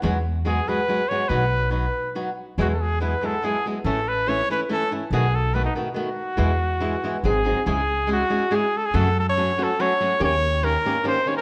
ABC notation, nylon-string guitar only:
X:1
M:3/4
L:1/8
Q:1/4=142
K:E
V:1 name="Nylon-string guitar"
[E,,B,,F,G,B,F] z [F,G,B,F] [F,G,B,F] [F,G,B,F] [F,G,B,F] | [B,,F,B,DF] z [F,B,DF] z [F,B,DF] z | [E,,B,,F,G,B,E] z [F,G,B,E] [F,G,B,E] [F,G,B,E] [F,G,B,E] | [A,,E,A,CE] z [E,A,CE] [E,A,CE] [E,A,CE] [E,A,CE] |
[B,,D,A,B,F] z [D,A,B,F] [D,A,B,F] [D,A,B,F] z | [E,,B,,E,G,B,E] z [E,G,B,E] [E,G,B,E] [F,^B,DG] [F,B,DG] | [K:C#m] [C,G,CEG] z [G,CEG] [G,CEG] [G,CEG] z | [F,,C,F,A,CF] z [F,A,CF] [F,A,CF] [F,A,CF] [F,A,CF] |
[D,^A,C=G] z [D,A,CG] [D,A,CG] [D,A,CG] [D,A,CG] |]